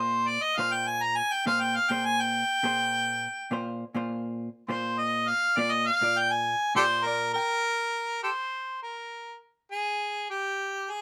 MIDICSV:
0, 0, Header, 1, 3, 480
1, 0, Start_track
1, 0, Tempo, 588813
1, 1198, Time_signature, 7, 3, 24, 8
1, 8980, End_track
2, 0, Start_track
2, 0, Title_t, "Harmonica"
2, 0, Program_c, 0, 22
2, 0, Note_on_c, 0, 72, 77
2, 232, Note_on_c, 0, 74, 81
2, 244, Note_off_c, 0, 72, 0
2, 346, Note_on_c, 0, 75, 78
2, 358, Note_off_c, 0, 74, 0
2, 472, Note_on_c, 0, 77, 88
2, 485, Note_off_c, 0, 75, 0
2, 589, Note_on_c, 0, 79, 74
2, 601, Note_off_c, 0, 77, 0
2, 716, Note_on_c, 0, 80, 76
2, 728, Note_off_c, 0, 79, 0
2, 837, Note_on_c, 0, 82, 76
2, 849, Note_off_c, 0, 80, 0
2, 948, Note_on_c, 0, 80, 75
2, 961, Note_off_c, 0, 82, 0
2, 1080, Note_on_c, 0, 79, 80
2, 1093, Note_off_c, 0, 80, 0
2, 1191, Note_off_c, 0, 79, 0
2, 1196, Note_on_c, 0, 77, 90
2, 1313, Note_on_c, 0, 79, 84
2, 1325, Note_off_c, 0, 77, 0
2, 1440, Note_on_c, 0, 77, 82
2, 1453, Note_off_c, 0, 79, 0
2, 1556, Note_on_c, 0, 79, 78
2, 1568, Note_off_c, 0, 77, 0
2, 1678, Note_on_c, 0, 80, 92
2, 1690, Note_off_c, 0, 79, 0
2, 1802, Note_on_c, 0, 79, 86
2, 1814, Note_off_c, 0, 80, 0
2, 2998, Note_off_c, 0, 79, 0
2, 3825, Note_on_c, 0, 72, 77
2, 4068, Note_on_c, 0, 75, 73
2, 4080, Note_off_c, 0, 72, 0
2, 4306, Note_on_c, 0, 77, 82
2, 4318, Note_off_c, 0, 75, 0
2, 4545, Note_on_c, 0, 74, 95
2, 4557, Note_off_c, 0, 77, 0
2, 4667, Note_on_c, 0, 75, 88
2, 4680, Note_off_c, 0, 74, 0
2, 4785, Note_on_c, 0, 77, 91
2, 4798, Note_off_c, 0, 75, 0
2, 5038, Note_on_c, 0, 79, 103
2, 5050, Note_off_c, 0, 77, 0
2, 5153, Note_on_c, 0, 80, 85
2, 5165, Note_off_c, 0, 79, 0
2, 5506, Note_off_c, 0, 80, 0
2, 5511, Note_on_c, 0, 67, 74
2, 5511, Note_on_c, 0, 69, 74
2, 5511, Note_on_c, 0, 72, 106
2, 5565, Note_off_c, 0, 69, 0
2, 5578, Note_off_c, 0, 67, 0
2, 5754, Note_on_c, 0, 70, 85
2, 5766, Note_off_c, 0, 72, 0
2, 5978, Note_off_c, 0, 70, 0
2, 5983, Note_on_c, 0, 70, 98
2, 6677, Note_off_c, 0, 70, 0
2, 6712, Note_on_c, 0, 67, 52
2, 6712, Note_on_c, 0, 69, 52
2, 6712, Note_on_c, 0, 72, 75
2, 6767, Note_off_c, 0, 69, 0
2, 6772, Note_off_c, 0, 67, 0
2, 7162, Note_off_c, 0, 72, 0
2, 7198, Note_on_c, 0, 70, 57
2, 7646, Note_off_c, 0, 70, 0
2, 7919, Note_on_c, 0, 68, 90
2, 8367, Note_off_c, 0, 68, 0
2, 8397, Note_on_c, 0, 67, 72
2, 8887, Note_on_c, 0, 68, 67
2, 8900, Note_off_c, 0, 67, 0
2, 8980, Note_off_c, 0, 68, 0
2, 8980, End_track
3, 0, Start_track
3, 0, Title_t, "Hollow-body jazz guitar"
3, 0, Program_c, 1, 26
3, 0, Note_on_c, 1, 46, 63
3, 0, Note_on_c, 1, 58, 63
3, 0, Note_on_c, 1, 65, 53
3, 0, Note_on_c, 1, 72, 70
3, 300, Note_off_c, 1, 46, 0
3, 302, Note_off_c, 1, 58, 0
3, 304, Note_off_c, 1, 65, 0
3, 307, Note_off_c, 1, 72, 0
3, 471, Note_on_c, 1, 46, 73
3, 476, Note_on_c, 1, 58, 62
3, 482, Note_on_c, 1, 65, 61
3, 486, Note_on_c, 1, 72, 74
3, 983, Note_off_c, 1, 46, 0
3, 986, Note_off_c, 1, 58, 0
3, 989, Note_off_c, 1, 65, 0
3, 991, Note_off_c, 1, 72, 0
3, 1190, Note_on_c, 1, 46, 78
3, 1193, Note_on_c, 1, 58, 72
3, 1199, Note_on_c, 1, 68, 69
3, 1204, Note_on_c, 1, 72, 90
3, 1448, Note_off_c, 1, 46, 0
3, 1450, Note_off_c, 1, 58, 0
3, 1453, Note_off_c, 1, 68, 0
3, 1455, Note_off_c, 1, 72, 0
3, 1547, Note_on_c, 1, 46, 60
3, 1554, Note_on_c, 1, 58, 56
3, 1557, Note_on_c, 1, 68, 58
3, 1562, Note_on_c, 1, 72, 76
3, 1976, Note_off_c, 1, 46, 0
3, 1980, Note_off_c, 1, 58, 0
3, 1981, Note_off_c, 1, 68, 0
3, 1984, Note_off_c, 1, 72, 0
3, 2145, Note_on_c, 1, 46, 72
3, 2151, Note_on_c, 1, 58, 67
3, 2157, Note_on_c, 1, 68, 64
3, 2163, Note_on_c, 1, 72, 66
3, 2660, Note_off_c, 1, 46, 0
3, 2663, Note_off_c, 1, 58, 0
3, 2666, Note_off_c, 1, 68, 0
3, 2667, Note_off_c, 1, 72, 0
3, 2860, Note_on_c, 1, 46, 89
3, 2866, Note_on_c, 1, 58, 73
3, 2871, Note_on_c, 1, 65, 77
3, 2877, Note_on_c, 1, 72, 101
3, 3123, Note_off_c, 1, 46, 0
3, 3124, Note_off_c, 1, 58, 0
3, 3128, Note_off_c, 1, 65, 0
3, 3131, Note_off_c, 1, 72, 0
3, 3216, Note_on_c, 1, 46, 87
3, 3223, Note_on_c, 1, 58, 74
3, 3228, Note_on_c, 1, 65, 73
3, 3233, Note_on_c, 1, 72, 90
3, 3650, Note_off_c, 1, 46, 0
3, 3653, Note_off_c, 1, 58, 0
3, 3656, Note_off_c, 1, 65, 0
3, 3658, Note_off_c, 1, 72, 0
3, 3819, Note_on_c, 1, 46, 73
3, 3823, Note_on_c, 1, 58, 67
3, 3828, Note_on_c, 1, 65, 67
3, 3835, Note_on_c, 1, 72, 83
3, 4336, Note_off_c, 1, 46, 0
3, 4338, Note_off_c, 1, 58, 0
3, 4340, Note_off_c, 1, 65, 0
3, 4344, Note_off_c, 1, 72, 0
3, 4540, Note_on_c, 1, 46, 83
3, 4546, Note_on_c, 1, 58, 75
3, 4552, Note_on_c, 1, 65, 78
3, 4555, Note_on_c, 1, 74, 90
3, 4802, Note_off_c, 1, 46, 0
3, 4805, Note_off_c, 1, 58, 0
3, 4807, Note_off_c, 1, 65, 0
3, 4809, Note_off_c, 1, 74, 0
3, 4901, Note_on_c, 1, 46, 66
3, 4906, Note_on_c, 1, 58, 63
3, 4913, Note_on_c, 1, 65, 63
3, 4918, Note_on_c, 1, 74, 72
3, 5332, Note_off_c, 1, 46, 0
3, 5335, Note_off_c, 1, 58, 0
3, 5338, Note_off_c, 1, 65, 0
3, 5340, Note_off_c, 1, 74, 0
3, 5502, Note_on_c, 1, 46, 73
3, 5510, Note_on_c, 1, 58, 62
3, 5514, Note_on_c, 1, 65, 71
3, 5520, Note_on_c, 1, 74, 69
3, 5746, Note_off_c, 1, 74, 0
3, 5756, Note_on_c, 1, 74, 64
3, 5979, Note_off_c, 1, 74, 0
3, 5997, Note_on_c, 1, 79, 55
3, 6019, Note_off_c, 1, 46, 0
3, 6020, Note_off_c, 1, 58, 0
3, 6024, Note_off_c, 1, 65, 0
3, 6219, Note_off_c, 1, 79, 0
3, 8980, End_track
0, 0, End_of_file